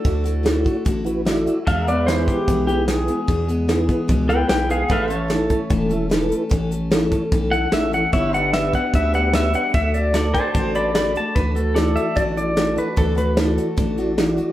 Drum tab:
HH |xxxxxxxx|xxxxxxxx|xxxxxxxx|xxxxxxxx|
SD |--o---o-|--o---o-|--o---o-|--o---o-|
BD |o--oo---|o--oo---|o--oo---|o--oo---|

HH |xxxxxxxx|xxxxxxxx|xxxxxxxx|xxxxxxxx|
SD |--o---o-|--o---o-|--o---o-|--o---o-|
BD |o--oo---|o--oo---|o--oo---|o---o---|

HH |xxxxxxxx|
SD |--o---o-|
BD |o---o---|